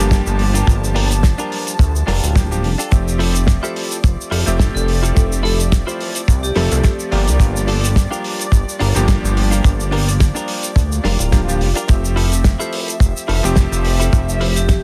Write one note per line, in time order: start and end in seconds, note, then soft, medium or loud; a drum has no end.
0.00 0.21 G1 loud
0.00 0.64 F3 loud
0.00 0.64 G3 medium
0.00 0.64 A#3 medium
0.00 0.18 D4 loud
0.00 0.64 D4 medium
0.00 0.19 F4 loud
0.00 0.19 G4 loud
0.00 0.65 G4 loud
0.00 0.19 A#4 loud
0.00 2.93 A5 medium
0.11 kick loud
0.11 snare loud
0.11 closed hi-hat medium
0.11 shaker medium
0.26 0.64 G1 loud
0.26 shaker medium
0.39 open hi-hat medium
0.54 0.75 D4 medium
0.54 0.75 F4 medium
0.54 0.75 G4 medium
0.54 0.75 A#4 medium
0.54 closed hi-hat medium
0.54 shaker medium
0.67 1.34 G1 loud
0.67 2.04 F3 medium
0.67 2.04 G3 medium
0.67 2.05 A#3 medium
0.67 2.05 D4 medium
0.67 2.05 G4 medium
0.67 kick loud
0.67 closed hi-hat medium
0.67 shaker medium
0.84 shaker soft
0.95 1.10 D4 loud
0.95 1.11 F4 loud
0.95 1.11 G4 loud
0.95 1.11 A#4 loud
0.95 open hi-hat loud
1.11 closed hi-hat medium
1.11 shaker medium
1.23 muted clean electric guitar stroke soft
1.23 kick loud
1.23 snare loud
1.23 closed hi-hat medium
1.23 shaker medium
1.38 1.73 D4 medium
1.38 1.73 F4 medium
1.38 1.73 G4 medium
1.38 1.73 A#4 loud
1.38 shaker soft
1.52 open hi-hat medium
1.67 closed hi-hat medium
1.67 shaker medium
1.79 2.03 D2 medium
1.79 kick loud
1.79 closed hi-hat medium
1.79 shaker medium
1.96 shaker medium
2.07 2.20 F1 medium
2.07 2.43 D4 loud
2.07 2.43 F4 medium
2.07 2.43 G4 loud
2.07 2.43 A#4 loud
2.07 snare medium
2.07 open hi-hat loud
2.23 2.65 D1 medium
2.23 closed hi-hat medium
2.23 shaker medium
2.35 2.48 F3 medium
2.35 2.48 G3 medium
2.35 2.48 A#3 medium
2.35 2.49 D4 medium
2.35 2.49 G4 medium
2.35 kick loud
2.35 snare loud
2.35 closed hi-hat medium
2.35 shaker medium
2.51 2.69 F3 medium
2.51 2.69 G3 medium
2.51 2.69 A#3 medium
2.51 2.69 D4 medium
2.51 2.69 G4 medium
2.51 shaker soft
2.64 2.76 F1 medium
2.64 open hi-hat medium
2.78 2.91 D4 medium
2.78 2.91 F4 medium
2.78 2.92 G4 medium
2.78 2.92 A4 medium
2.78 closed hi-hat medium
2.78 shaker medium
2.91 3.59 F1 medium
2.91 4.43 F3 medium
2.91 4.43 A3 medium
2.91 4.43 C4 medium
2.91 4.44 G4 medium
2.91 11.90 D5 medium
2.91 4.44 E5 medium
2.91 kick loud
2.91 closed hi-hat medium
2.91 shaker medium
3.08 shaker medium
3.19 3.35 E4 loud
3.19 3.35 F4 loud
3.19 3.35 G4 loud
3.19 3.35 A4 loud
3.19 open hi-hat loud
3.35 closed hi-hat medium
3.35 shaker medium
3.47 muted clean electric guitar stroke soft
3.47 kick loud
3.47 snare loud
3.47 closed hi-hat medium
3.47 shaker medium
3.63 3.97 E4 medium
3.63 3.97 F4 medium
3.63 3.98 G4 medium
3.63 3.98 A4 loud
3.63 3.80 C5 medium
3.63 shaker soft
3.76 open hi-hat loud
3.92 closed hi-hat medium
3.92 shaker medium
4.04 4.16 F1 medium
4.04 kick loud
4.04 closed hi-hat medium
4.04 shaker medium
4.21 shaker medium
4.31 4.44 F1 medium
4.31 4.67 E4 loud
4.31 4.67 F4 loud
4.31 4.68 G4 loud
4.31 4.68 A4 loud
4.31 open hi-hat loud
4.46 4.70 F1 loud
4.46 5.12 F3 medium
4.46 5.12 A3 medium
4.46 5.13 C4 medium
4.46 5.13 G4 loud
4.46 5.13 E5 medium
4.46 closed hi-hat medium
4.46 shaker medium
4.59 kick medium
4.59 snare loud
4.59 closed hi-hat medium
4.59 shaker medium
4.75 5.12 F1 loud
4.75 5.31 A4 medium
4.75 shaker soft
4.88 open hi-hat medium
5.02 5.23 E4 medium
5.02 5.23 F4 medium
5.02 5.23 G4 medium
5.02 5.24 A4 loud
5.02 closed hi-hat medium
5.02 shaker medium
5.15 5.83 F1 loud
5.15 6.52 F3 medium
5.15 6.52 A3 medium
5.15 6.53 C4 medium
5.15 6.53 G4 medium
5.15 6.53 E5 medium
5.15 kick loud
5.15 closed hi-hat medium
5.15 shaker medium
5.32 shaker medium
5.43 5.59 E4 loud
5.43 5.59 F4 loud
5.43 5.59 G4 medium
5.43 5.63 A4 loud
5.43 5.59 A4 loud
5.43 open hi-hat loud
5.60 closed hi-hat medium
5.60 shaker medium
5.71 muted clean electric guitar stroke soft
5.71 kick loud
5.71 snare loud
5.71 closed hi-hat medium
5.71 shaker medium
5.87 6.21 E4 medium
5.87 6.22 F4 medium
5.87 6.22 G4 medium
5.87 6.22 C5 loud
5.87 shaker soft
6.01 open hi-hat loud
6.15 closed hi-hat medium
6.15 shaker medium
6.28 6.52 C2 medium
6.28 kick loud
6.28 closed hi-hat medium
6.28 shaker medium
6.43 7.18 G4 loud
6.43 shaker soft
6.55 6.69 F1 medium
6.55 7.09 F3 medium
6.55 7.09 A3 medium
6.55 7.09 C4 medium
6.55 6.91 E4 loud
6.55 6.92 F4 loud
6.55 6.92 G4 loud
6.55 7.09 A4 loud
6.55 6.92 A4 loud
6.55 7.09 E5 medium
6.55 snare medium
6.55 open hi-hat loud
6.72 6.82 C2 medium
6.72 closed hi-hat medium
6.72 shaker medium
6.84 kick loud
6.84 snare loud
6.84 closed hi-hat medium
6.84 shaker medium
6.99 shaker medium
7.11 7.30 G1 loud
7.11 7.37 F3 medium
7.11 7.37 G3 medium
7.11 7.37 A#3 medium
7.11 7.58 D4 medium
7.11 7.37 D4 medium
7.11 7.58 F4 medium
7.11 7.58 G4 medium
7.11 7.37 G4 medium
7.11 7.58 A#4 loud
7.11 open hi-hat medium
7.28 7.38 C2 medium
7.28 closed hi-hat medium
7.28 shaker medium
7.39 8.07 G1 loud
7.39 8.92 F3 medium
7.39 8.92 G3 medium
7.39 8.92 A#3 medium
7.39 8.92 D4 medium
7.39 8.93 G4 medium
7.39 kick loud
7.39 closed hi-hat medium
7.39 shaker medium
7.56 shaker medium
7.67 7.83 D4 loud
7.67 7.83 F4 loud
7.67 7.83 G4 medium
7.67 7.84 A4 loud
7.67 open hi-hat loud
7.84 closed hi-hat medium
7.84 shaker medium
7.95 muted clean electric guitar stroke soft
7.95 kick loud
7.95 snare loud
7.95 closed hi-hat medium
7.95 shaker medium
8.11 8.45 D4 medium
8.11 8.46 F4 medium
8.11 8.46 G4 medium
8.11 8.46 A#4 medium
8.11 shaker medium
8.24 open hi-hat medium
8.39 closed hi-hat medium
8.39 shaker medium
8.52 8.65 G1 medium
8.52 kick loud
8.52 closed hi-hat medium
8.52 shaker medium
8.69 shaker medium
8.79 8.93 G1 medium
8.79 9.16 D4 loud
8.79 9.16 F4 medium
8.79 9.16 G4 loud
8.79 9.16 A#4 loud
8.79 open hi-hat loud
8.95 9.18 G1 loud
8.95 9.61 F3 loud
8.95 9.61 G3 medium
8.95 9.61 A#3 medium
8.95 9.62 D4 medium
8.95 9.62 G4 loud
8.95 closed hi-hat medium
8.95 shaker medium
9.08 kick medium
9.08 snare loud
9.08 closed hi-hat medium
9.08 shaker medium
9.24 9.61 G1 loud
9.24 shaker medium
9.37 open hi-hat loud
9.51 9.72 D4 medium
9.51 9.72 F4 medium
9.51 9.72 G4 medium
9.51 9.72 A#4 loud
9.51 closed hi-hat medium
9.51 shaker medium
9.64 10.32 G1 loud
9.64 11.01 F3 medium
9.64 11.02 G3 medium
9.64 11.02 A#3 medium
9.64 11.02 D4 medium
9.64 11.02 G4 medium
9.64 kick loud
9.64 closed hi-hat medium
9.64 shaker medium
9.80 shaker soft
9.91 10.07 D4 loud
9.91 10.07 F4 medium
9.91 10.08 G4 loud
9.91 10.08 A#4 loud
9.91 open hi-hat loud
10.08 closed hi-hat medium
10.08 shaker medium
10.20 muted clean electric guitar stroke soft
10.20 kick loud
10.20 snare loud
10.20 closed hi-hat medium
10.20 shaker medium
10.35 10.70 D4 medium
10.35 10.70 F4 medium
10.35 10.70 G4 medium
10.35 10.70 A#4 loud
10.35 shaker soft
10.48 open hi-hat medium
10.63 closed hi-hat medium
10.63 shaker medium
10.76 11.00 D2 medium
10.76 kick loud
10.76 closed hi-hat medium
10.76 swell medium
10.76 shaker medium
10.92 shaker soft
11.04 11.17 F1 medium
11.04 11.40 D4 loud
11.04 11.40 F4 loud
11.04 11.40 G4 medium
11.04 11.41 A#4 loud
11.04 snare medium
11.04 open hi-hat loud
11.19 11.62 D1 medium
11.19 closed hi-hat medium
11.19 shaker medium
11.32 11.45 F3 medium
11.32 11.45 G3 medium
11.32 11.45 A#3 medium
11.32 11.46 D4 medium
11.32 11.46 G4 medium
11.32 kick loud
11.32 snare loud
11.32 closed hi-hat medium
11.32 shaker medium
11.48 11.66 F3 medium
11.48 11.66 G3 medium
11.48 11.66 A#3 medium
11.48 11.66 D4 medium
11.48 11.66 G4 medium
11.48 shaker medium
11.61 11.73 F1 medium
11.61 open hi-hat medium
11.75 11.88 D4 medium
11.75 11.89 F4 medium
11.75 11.89 G4 medium
11.75 11.89 A#4 loud
11.75 closed hi-hat medium
11.75 shaker medium
11.88 12.56 F1 loud
11.88 13.40 F3 medium
11.88 13.40 A3 medium
11.88 13.41 C4 medium
11.88 13.41 G4 medium
11.88 14.83 E5 medium
11.88 13.41 E5 medium
11.88 kick loud
11.88 closed hi-hat medium
11.88 shaker medium
12.05 shaker medium
12.16 12.32 E4 loud
12.16 12.32 F4 loud
12.16 12.32 G4 medium
12.16 12.32 A4 loud
12.16 open hi-hat loud
12.32 closed hi-hat medium
12.32 shaker medium
12.44 muted clean electric guitar stroke soft
12.44 kick loud
12.44 snare loud
12.44 closed hi-hat medium
12.44 shaker medium
12.60 12.94 E4 medium
12.60 12.94 F4 medium
12.60 12.95 G4 medium
12.60 12.95 A4 medium
12.60 12.78 C5 medium
12.60 shaker medium
12.73 open hi-hat loud
12.88 closed hi-hat medium
12.88 shaker medium
13.00 13.13 F1 medium
13.00 kick loud
13.00 closed hi-hat medium
13.00 shaker medium
13.17 shaker medium
13.28 13.42 F1 medium
13.28 13.64 E4 loud
13.28 13.64 F4 loud
13.28 13.65 G4 medium
13.28 13.65 A4 loud
13.28 open hi-hat loud
13.43 13.67 F1 loud
13.43 14.09 F3 loud
13.43 14.10 A3 medium
13.43 14.10 C4 medium
13.43 14.10 G4 loud
13.43 14.10 E5 medium
13.43 closed hi-hat medium
13.43 shaker medium
13.56 kick loud
13.56 snare loud
13.56 closed hi-hat medium
13.56 shaker medium
13.72 14.09 F1 loud
13.72 shaker medium
13.84 open hi-hat loud
14.00 14.20 E4 medium
14.00 14.21 F4 medium
14.00 14.21 G4 medium
14.00 14.21 A4 loud
14.00 closed hi-hat medium
14.00 shaker medium
14.12 14.80 F1 loud
14.12 14.83 F3 medium
14.12 14.83 A3 medium
14.12 14.83 C4 medium
14.12 14.83 G4 medium
14.12 14.83 E5 medium
14.12 kick loud
14.12 closed hi-hat medium
14.12 shaker medium
14.29 shaker medium
14.40 14.56 E4 loud
14.40 14.56 F4 loud
14.40 14.56 G4 loud
14.40 14.57 C5 loud
14.40 open hi-hat loud
14.56 14.64 G4 medium
14.56 closed hi-hat medium
14.56 shaker medium
14.69 14.79 G4 medium
14.69 muted clean electric guitar stroke soft
14.69 kick loud
14.69 snare loud
14.69 closed hi-hat medium
14.69 shaker medium